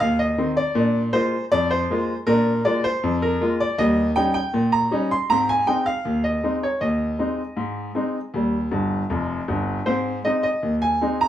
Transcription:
grand piano
0.00 D#2 F5
0.19 D#5
0.38 D#3 C4
0.57 D5
0.75 A#2 D4
1.13 G#3 A#3 F4 C5
1.52 F2 D5
1.71 C5
1.90 G#3 A#3 F4
2.27 A#2 D4 A#4
2.65 G#3 A#3 F4 D5
2.84 C5
3.03 F2
3.22 A#4
3.41 G#3 A#3 F4
3.60 D5
3.78 D#2 G3 D#5
4.16 G3 C#4 D#4 G5
4.34 G5
4.54 A#2
4.72 A#5
4.91 G3 C#4 D#4
5.11 C6
5.30 G#2 C4 A#5
5.49 G#5
5.67 G#3 C4 D#4 G5
5.86 F5
6.05 D#2
6.24 D#5
6.43 G#3 C4 D#4
6.63 C#5
6.81 D#2 D#5
7.19 G#3 C4 D#4
7.57 G#2
7.95 G#3 C4 D#4
8.34 D#2 G3
8.71 G1 G2
9.10 F1 F2
9.48 G1 G2
9.86 G#2 C4 C5
10.25 G#3 C4 D#4 D#5
10.43 D#5
10.63 D#2
10.82 G#5
11.01 G#3 C4 D#4
11.21 A#5

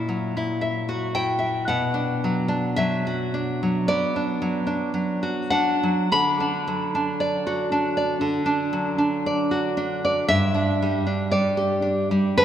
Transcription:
nylon-string guitar
Already playing: A#2 E4 F#4 E5 F#5
0.09 F#3
0.37 E4
0.61 E5
0.89 F#4
1.15 E4 G5
1.39 E5
1.68 B2 F#5
1.94 D4
2.24 F#3
2.48 D4
2.76 F#3 E5
3.07 F#4
3.34 D4
3.63 F#3
3.88 B3 D5
4.16 D4
4.42 F#3
4.67 D4
4.94 F#3
5.23 F#4
5.50 D4 F#5
5.83 F#3
6.12 D3 B5
6.40 D4
6.67 F#3
6.95 D4
7.20 D5
7.47 F#4
7.72 D4
7.97 D5
8.21 D3
8.46 D4
8.73 F#3
8.98 D4
9.26 D5
9.51 F#4
9.77 D4
10.05 D5
10.28 G2 E5
10.54 D4
10.82 G3
11.07 D4
11.32 G3 D5
11.57 G4
11.82 D4
12.11 G3
12.38 D3 B4

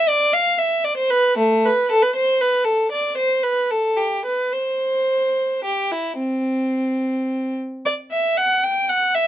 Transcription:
violin
0.08 D5
0.33 F5
0.58 E5
0.84 D5
0.97 C5
1.10 B4
1.38 A3
1.65 B4
1.91 A4
2.02 B4
2.16 C5
2.41 B4
2.64 A4
2.92 D5
3.17 C5
3.43 B4
3.70 A4
3.97 G4
4.25 B4
4.53 C5
5.64 G4
5.91 E4
6.19 C4
7.85 D5
8.12 E5
8.37 F#5
8.64 G5
8.89 F#5
9.15 E5

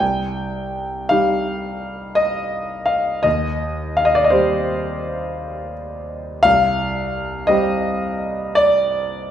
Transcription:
grand piano
0.00 C2 G5
1.09 G3 D#4 G4 F5
2.15 D#5
2.86 F5
3.23 D#2 D#5
3.97 F5
4.05 D#5
4.15 D5
4.24 D#5
4.30 G3 C4 G4 C5
6.43 C2 F5
7.47 G3 C4 G4 D#5
8.55 D5

